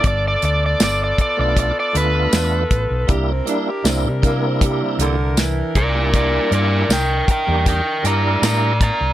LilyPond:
<<
  \new Staff \with { instrumentName = "Electric slide guitar" } { \time 4/4 \key c \major \tempo 4 = 79 d''16 d''16 d''16 d''16 d''16 d''16 d''16 d''16 d''16 d''16 b'4. | r2. r8 <bes' d''>8 | <bes' d''>8 <bes' d''>8 <bes' g''>8 <bes' g''>8 <bes' g''>8 <d'' bes''>8 <d'' bes''>8 <d'' bes''>8 | }
  \new Staff \with { instrumentName = "Horn section" } { \time 4/4 \key c \major <b f' a'>1 | <d' e' bes'>1~ | <d' e' bes'>1 | }
  \new Staff \with { instrumentName = "Tonewheel organ" } { \time 4/4 \key c \major r4. r16 <a b d' f'>8 r16 <a b d' f'>4 r8 | <g bes d' e'>16 r16 <g bes d' e'>16 r16 <g bes d' e'>16 r16 <g bes d' e'>4~ <g bes d' e'>16 r4 <g bes d' e'>16~ | <g bes d' e'>4 r8. <g bes d' g'>8 r16 <g d' e' bes'>4 r8 | }
  \new Staff \with { instrumentName = "Tenor saxophone" } { \time 4/4 \key c \major r1 | g'16 c'16 d'16 g'16 c'16 g16 bes16 c'16 g16 c16 d8 e8 r8 | r1 | }
  \new Staff \with { instrumentName = "Fingered electric bass" } { \clef bass \time 4/4 \key c \major g,,8 d,8 g,,8 r16 b,,8 r16 d,8 e,8 a,,16 b,,16 | c,8 r8 c,16 c4~ c16 c,4 c,8~ | c,8 g,8 c,8 r16 e,8 r16 g,8 a,8. c,16 | }
  \new DrumStaff \with { instrumentName = "Drums" } \drummode { \time 4/4 <hh bd>8 hh8 <hh sn tamb>8 <hh bd>8 <hh bd>8 hh8 <hh sn tamb>8 <hh bd>8 | <hh bd>8 hh8 <hh sn tamb>8 <hh bd>8 <hh bd>8 hh8 <hh sn tamb>8 <hh bd>8 | <hh bd>8 hh8 <hh sn tamb>8 <hh bd>8 <hh bd>8 hh8 <hh sn tamb>8 <hh bd>8 | }
>>